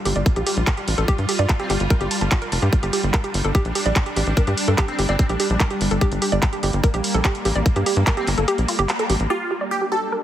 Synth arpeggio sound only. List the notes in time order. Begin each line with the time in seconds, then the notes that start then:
0.05 G4
0.16 D5
0.36 G4
0.47 G4
0.67 A#4
0.77 G4
0.98 A4
1.08 G4
1.29 G4
1.39 D5
1.60 G4
1.70 G4
1.90 A#4
2.01 G4
2.11 A5
2.21 A5
2.31 F4
2.42 A#4
2.52 A5
2.62 G4
2.83 G4
2.93 G4
3.14 A#4
3.24 G4
3.45 A4
3.55 G4
3.75 G4
3.86 D5
4.06 G4
4.16 G4
4.37 A#4
4.47 G4
4.68 A4
4.78 G4
4.99 G4
5.09 D5
5.29 G4
5.40 G4
5.60 A#4
5.71 G4
5.91 A4
6.01 G4
6.22 G4
6.32 D5
6.53 G4
6.63 G4
6.84 A#4
6.94 G4
7.14 A4
7.25 G4
7.45 G4
7.56 D5
7.76 G4
7.86 G4
8.07 A#4
8.17 G4
8.38 A4
8.48 G4
8.68 F4
8.79 G4
8.99 A4
9.10 G4
9.30 G4
9.51 G4
9.61 D5
9.82 G4
9.92 G4
10.12 A#4